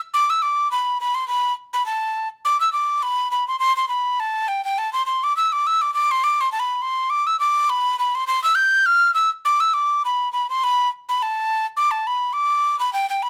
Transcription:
tin whistle
0.14 D6
0.30 E6
0.42 D6
0.71 B5
1.01 B5
1.15 C6
1.28 B5
1.73 B5
1.86 A5
2.45 D6
2.60 E6
2.73 D6
3.03 B5
3.31 B5
3.48 C6
3.59 C6
3.77 C6
3.89 B5
4.20 A5
4.48 G5
4.65 G5
4.78 A5
4.93 C6
5.06 C6
5.24 D6
5.37 E6
5.52 D6
5.67 E6
5.82 D6
5.94 D6
6.11 C6
6.24 D6
6.41 C6
6.52 A5
6.60 B5
6.82 C6
7.10 D6
7.27 E6
7.40 D6
7.70 B5
7.99 B5
8.15 C6
8.27 C6
8.44 E6
8.55 G6
8.86 F6
9.14 E6
9.45 D6
9.60 E6
9.74 D6
10.05 B5
10.32 B5
10.50 C6
10.64 B5
11.09 B5
11.22 A5
11.77 D6
11.91 A5
12.07 B5
12.33 D6
12.79 B5
12.93 G5
13.10 G5
13.23 B5

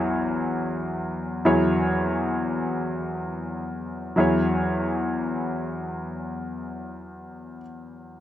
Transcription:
grand piano
Already playing: E2 F#3 E4 G#4 C#5
1.45 E2 F#3 E4 G#4 C#5
4.16 E2 F#3 E4 G#4
4.20 C#5

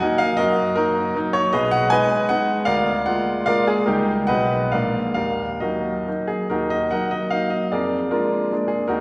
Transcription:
grand piano
0.00 F#3 A#3 D#4 A#4 D#5 F#5
0.18 F5
0.37 F#2 F#4 A#4 D#5
0.76 F#3 A#3 D#4 F#4 A#4
1.16 F#3 A#3 D#4
1.33 C#5
1.53 B1 G#4 B4 D#5
1.71 F#5
1.90 G#3 B3 D#4 B4 D#5 G#5
2.29 G#3 B3 D#4 F#5
2.65 D2 A#4 D5 F5
3.06 G#3 A#3 F4 F#5
3.46 G#3 A#3 F4 A#4 D5 F5
3.68 G#4
3.86 C#2 G3 A#3 D#4 G4 A#4
4.27 B1 G#3 D#4 B4 D#5 F#5
4.72 A#1 G#3 A#3 D4 A#4 D5 F5
5.14 D#2 A#4 F5
5.60 F#3 A#3 D#4 F#4 A#4 D#5
6.07 F#3 A#3 D#4
6.28 G#4
6.50 D#2 D#4 F#4 A#4
6.70 D#5
6.91 F#3 A#3 D#4 A#4 D#5 F#5
7.11 D#5
7.30 F#3 A#3 D#4 F5
7.50 D#5
7.72 F2 G#4 A#4 D5
8.11 G#3 A#3 D4 F4 A#4
8.52 G#3 A#3 D4
8.68 G#4
8.88 D#2 D#4 F#4 A#4

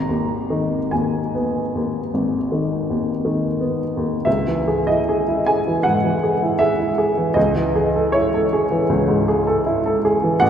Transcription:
upright piano
Already playing: G#1 A#5
0.09 D#2
0.50 D#3
0.91 D#2 G#5
1.35 B3
1.75 D#2
2.14 G#1
2.52 D#3
2.90 D#2
3.25 D#3
3.61 B3
3.97 D#2
4.25 C#2 E5
4.47 E3
4.68 G#4
4.87 E4 D#5
5.09 G#4
5.28 E4
5.46 G#4 G#5
5.67 E3
5.83 G#2 F#5
6.04 E3
6.23 G#4
6.42 E4
6.59 G#4 E5
6.80 E4
6.98 G#4
7.18 E3
7.34 C#2 D#5
7.56 E3
7.75 G#4
7.96 A4
8.12 E4 C#5
8.34 A4
8.53 G#4
8.71 E3
8.89 C#2
9.08 G#2
9.28 G#4
9.47 A4
9.66 E4
9.86 A4
10.05 G#4
10.23 E3
10.40 A1 F#5

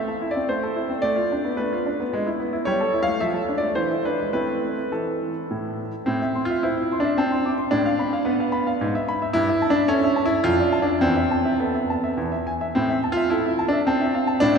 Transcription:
grand piano
Already playing: E5
0.08 A4
0.22 E4
0.31 D5
0.36 C4
0.49 A3 C5
0.63 A4
0.76 E4
0.90 C4
1.02 A3 D5
1.16 F4
1.32 D4
1.45 B3
1.57 A3 B4
1.73 F4
1.86 D4
2.00 B3
2.13 G#3
2.27 E4
2.40 B3
2.53 E4
2.65 G3 C#5
2.81 A4
2.94 E4
3.03 F5
3.08 A3
3.21 F3 E5
3.34 A4
3.49 D4
3.58 D5
3.63 A3
3.75 E3 C5
3.92 E4
4.05 D4 B4
4.20 G#3
4.33 A3 C4 E4 B4
4.92 E3 A4
5.51 A2
6.06 A2 C4
6.22 E5
6.35 C6
6.45 F4
6.50 E5
6.63 E4 C5
6.78 E5
6.92 C6
7.00 D4
7.05 E5
7.18 C4 A5
7.32 C6
7.46 D6
7.58 C6
7.71 A2 D4
7.86 F5
7.99 B5
8.13 F5
8.25 B3 B4
8.40 F5
8.52 B5
8.67 F5
8.81 G#2
8.95 E5
9.09 B5
9.22 E5
9.33 G2 E4
9.49 E5
9.62 A5
9.70 D4
9.75 E5
9.88 C#4 A4
10.04 E5
10.16 A5
10.25 E4
10.31 E5
10.44 F2 F4
10.60 D5
10.72 A5
10.82 D4
10.88 D5
11.01 E2 C4
11.16 E5
11.31 A5
11.45 E5
11.59 B3 A4
11.74 E5
11.90 A5
12.04 E5
12.17 E2
12.32 E5
12.47 G#5
12.61 E5
12.75 A2 C4
12.90 E5
13.04 A5
13.12 F4
13.17 E5
13.30 E4 A4
13.46 E5
13.59 A5
13.69 D4
13.73 E5
13.87 C4 A5
14.01 E5
14.14 F5
14.27 A5
14.40 A2 D4
14.55 D5

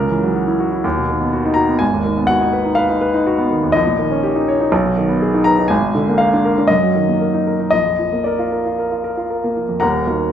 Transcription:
grand piano
Already playing: C#2 A#4
0.00 C#3
0.10 E3
0.23 F#3
0.36 F#4
0.47 E4
0.60 F#4
0.72 E4
0.84 D#2
0.96 B2
1.09 D#3
1.21 B3
1.33 F#4
1.45 D#4
1.54 F#4 A#5
1.69 B3
1.79 G#1 G#5
1.93 D#2
2.05 D#3
2.18 B3
2.27 F#4 F#5
2.41 D#4
2.53 B4
2.65 D#4
2.75 B4 F5
2.89 D#4
3.01 B4
3.14 D#4
3.27 F#4
3.38 B3
3.50 D#3
3.63 D#2
3.72 A#1 D#5
3.87 A#2
3.99 D#3
4.11 C#4
4.23 G4
4.36 D#4
4.48 C#5
4.60 D#4
4.72 B1
4.85 B2
4.97 D#3
5.09 B3
5.22 G#4
5.34 D#4
5.44 B4 A#5
5.59 D#4
5.68 G#1 G#5
5.83 G#2
5.95 D3
6.09 A#3
6.18 A#4 F5
6.33 D4
6.45 A#4
6.58 D4
6.67 F#2 D#5
6.83 F#3
6.95 D#3
7.08 A#3
7.21 A#4
7.34 D#4
7.47 A#4
7.60 D#4
7.71 A#1 D#5
7.85 F2
7.99 F3
8.12 A#3
8.24 A#4 D5
8.39 F4
8.52 A#4
8.66 F4
8.79 A#4
8.91 F4
9.04 A#4
9.17 F4
9.30 A#4
9.44 A#3
9.57 F3
9.69 F2
9.80 D#1 D#2 A#4 F#5 A#5
10.07 D#3 A#3 F#4

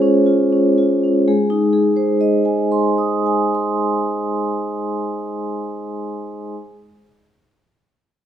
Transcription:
vibraphone
Already playing: G#3 C#4 F4 G#4 C5 C#5
0.02 C#4
0.26 F4
0.52 C#4
0.78 F4
1.04 C#4
1.28 G#3 G#4
1.50 D#4
1.73 G#4
1.97 C5
2.21 D#5
2.45 G#5
2.72 C6
2.98 D#6
3.26 G#5
3.55 C6

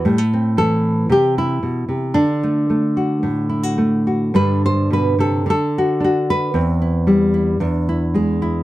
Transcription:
nylon-string guitar
0.05 A2 G3
0.18 A3
0.33 C4
0.57 E3 A4
1.09 C3 G4
1.38 E4
1.63 B2
1.88 C3
2.14 D3 D4
2.43 A3
2.70 A3
2.97 F#4
3.23 A2
3.49 E4
3.63 F#4
3.78 A3
4.07 F#4
4.34 G2 D3 G3 D4 B4
4.66 C5
4.91 B2 B4
5.19 C3 A4
5.46 D3
5.50 A4
5.78 F#4
6.00 D4
6.04 F#4
6.30 B4
6.54 E2 C4
6.82 E4
7.07 G3 E4
7.34 E4
7.60 E2 D4
7.89 E4
8.14 G#3 G#4
8.42 E4

